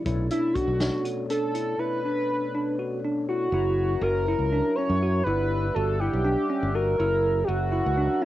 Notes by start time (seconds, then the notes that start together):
0.03 B1 B2 A3 C#4 D4 E4, kick, closed hi-hat
0.30 D4 E4, closed hi-hat
0.54 F#4, kick, closed hi-hat
0.68 B1
0.80 D4, snare, closed hi-hat
1.05 F#4, closed hi-hat
1.30 D4 A4, closed hi-hat
1.55 E4, closed hi-hat
1.77 B2 A3 C#4 D4 E4 B4
2.05 D4
2.55 D4
2.79 F#4
3.05 D4
3.29 E4 F#4
3.52 F#1 F#3 C#4 E4 A#4
4.02 F#1 F#4 A#4
4.25 E4 A#4
4.39 C#2
4.53 D4
4.76 C#4 C#5
4.90 F#2
5.03 F#4
5.24 G1 G3 D4 E4 B4 F#5
5.28 E5
5.75 G1 F#4 A4
6.00 E4 G4
6.13 B1
6.25 D4
6.50 C#4
6.63 G1
6.75 F#4 A#4
6.97 F#1 F#3 C#4 E4 A#4 E5
7.44 F#4 G4
7.48 F#1 F#4
7.72 E4 F#4
7.86 C#2
7.97 D4
8.22 C#4 E4